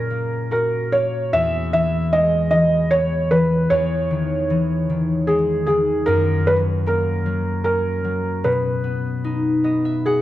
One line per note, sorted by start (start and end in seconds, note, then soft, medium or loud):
0.00 1.39 A#2 soft
0.00 2.61 C#4 medium
0.00 0.38 G#4 medium
0.00 0.50 A#4 medium
0.10 0.92 A#3 soft
0.51 2.95 F#4 soft
0.51 0.94 A#4 medium
0.92 2.98 A#3 soft
0.92 1.34 C#5 medium
1.33 3.70 E2 medium
1.33 1.72 E5 medium
1.73 2.51 E3 soft
1.73 2.14 E5 medium
2.13 3.76 G#3 medium
2.13 2.49 D#5 medium
2.51 3.30 E3 soft
2.51 2.92 D#5 medium
2.91 6.03 B3 soft
2.91 3.32 C#5 medium
3.31 3.76 E3 medium
3.31 3.72 B4 medium
3.70 6.13 E2 medium
3.70 5.33 C#5 medium
4.11 4.88 D#3 medium
4.50 4.94 E3 medium
4.90 5.67 D#3 medium
5.27 5.73 G#3 medium
5.27 5.65 G#4 medium
5.66 6.13 D#3 soft
5.66 6.04 G#4 medium
6.06 8.50 F#2 medium
6.06 6.47 A#4 medium
6.47 7.25 F#3 soft
6.47 6.56 B4 medium
6.86 8.50 A#3 medium
6.86 7.63 A#4 medium
7.26 8.03 F#3 medium
7.64 10.22 C#4 medium
7.64 8.46 A#4 medium
8.04 8.50 F#3 soft
8.44 10.22 B2 medium
8.44 10.02 B4 medium
8.84 9.64 B3 soft
9.24 10.22 D#4 medium
9.64 10.22 B3 soft
9.64 9.91 D#5 medium
9.85 10.22 E5 medium
10.06 10.22 F#4 soft
10.06 10.22 G#4 medium
10.06 10.22 F#5 medium